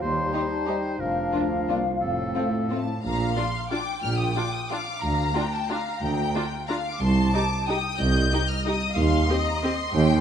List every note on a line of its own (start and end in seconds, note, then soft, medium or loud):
0.01 0.28 D#2 medium
0.01 0.98 G3 medium
0.01 1.02 D#4 soft
0.01 1.01 C5 soft
0.01 0.50 C6 medium
0.33 0.46 G3 soft
0.33 0.46 D#4 soft
0.33 0.42 D#4 soft
0.33 0.41 G4 soft
0.33 0.42 C5 soft
0.51 0.67 A5 medium
0.65 0.80 G3 soft
0.65 0.76 D#4 soft
0.65 0.80 D#4 soft
0.65 0.73 G4 soft
0.65 0.76 C5 soft
0.65 1.00 G5 medium
0.99 1.27 F1 soft
0.99 1.27 F2 medium
0.99 2.84 F3 soft
0.99 1.74 D4 soft
0.99 1.74 A#4 soft
0.99 2.85 F5 medium
1.32 1.66 D2 medium
1.32 1.47 A#3 soft
1.32 1.41 D4 soft
1.32 1.47 D4 soft
1.32 1.40 F4 soft
1.32 1.41 A#4 soft
1.67 2.02 C2 medium
1.67 1.82 A#3 soft
1.67 1.77 D4 soft
1.67 1.82 D4 soft
1.67 1.75 F4 soft
1.67 1.78 A#4 soft
2.01 2.29 F1 soft
2.01 3.04 A2 medium
2.01 2.84 C4 soft
2.01 2.83 A4 soft
2.34 2.47 A3 soft
2.34 2.47 C4 soft
2.34 2.43 C4 soft
2.34 2.42 F4 soft
2.34 2.43 A4 soft
2.70 2.84 A3 soft
2.70 2.79 C4 soft
2.70 2.83 C4 soft
2.70 2.78 F4 soft
2.70 2.78 A4 soft
2.70 3.01 A5 medium
3.03 3.31 A#1 medium
3.03 3.31 A#2 medium
3.03 3.67 F5 medium
3.03 3.36 A#5 medium
3.35 3.45 D4 medium
3.35 3.45 F4 medium
3.35 3.69 C6 medium
3.69 3.79 D4 medium
3.69 3.79 F4 medium
3.69 4.70 G5 medium
3.69 4.02 D6 medium
4.01 4.30 A#1 medium
4.01 4.31 A#2 medium
4.01 4.18 F6 medium
4.18 4.35 D#6 medium
4.35 4.44 D4 soft
4.35 4.44 F4 medium
4.35 4.53 D6 medium
4.53 4.70 D#6 medium
4.69 4.78 D4 medium
4.69 4.78 F4 soft
4.69 5.35 F5 medium
4.69 5.02 D6 medium
5.02 5.29 D2 medium
5.02 5.52 A#5 medium
5.35 5.43 D4 medium
5.35 5.43 F4 medium
5.35 5.70 G5 medium
5.53 5.70 A5 medium
5.69 5.78 D4 medium
5.69 5.78 F4 medium
5.69 6.02 F5 medium
5.69 6.51 A#5 medium
6.01 6.28 D2 medium
6.01 6.67 G5 medium
6.34 6.43 D4 medium
6.34 6.42 F4 medium
6.68 6.77 D4 medium
6.68 6.77 F4 medium
6.68 7.00 F5 medium
6.68 6.75 A#5 medium
6.86 7.01 D6 medium
7.00 7.27 C2 medium
7.00 7.28 C2 medium
7.00 7.66 A5 medium
7.00 7.33 C6 medium
7.33 7.42 D#4 medium
7.33 7.42 G4 medium
7.33 7.66 D6 medium
7.67 7.76 D#4 medium
7.67 7.77 G4 medium
7.67 7.99 G5 medium
7.67 7.98 D#6 loud
7.98 8.25 C2 medium
7.98 8.26 C2 medium
7.98 8.29 D#5 medium
7.98 8.48 G6 loud
8.30 8.40 D#4 medium
8.30 8.40 G4 medium
8.30 8.95 D#5 medium
8.49 8.65 F6 medium
8.66 8.74 D#4 medium
8.66 8.74 G4 medium
8.66 8.96 D#6 medium
8.95 9.23 D#2 medium
8.95 9.28 F5 medium
8.95 9.47 C6 loud
9.29 9.37 C4 medium
9.29 9.37 G4 medium
9.29 9.93 D#5 medium
9.47 9.63 A#5 medium
9.63 9.71 C4 medium
9.63 9.71 G4 medium
9.63 10.21 C6 loud
9.93 10.20 D#2 medium
9.93 10.21 G5 medium